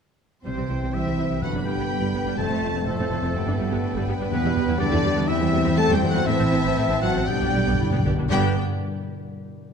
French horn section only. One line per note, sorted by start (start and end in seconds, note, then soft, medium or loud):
0.45 0.90 C4 medium
0.93 1.42 E4 medium
1.42 1.53 F#4 medium
1.64 2.36 G4 medium
2.38 2.85 A4 medium
2.87 4.07 A3 medium
4.32 4.76 B3 medium
4.79 5.28 D4 loud
5.29 5.77 E4 loud
5.77 5.93 A4 loud
5.95 6.11 G4 loud
6.11 6.27 F#4 loud
6.26 7.02 E4 loud
7.03 7.28 F#4 medium
7.28 8.04 G4 medium
8.32 8.53 G4 medium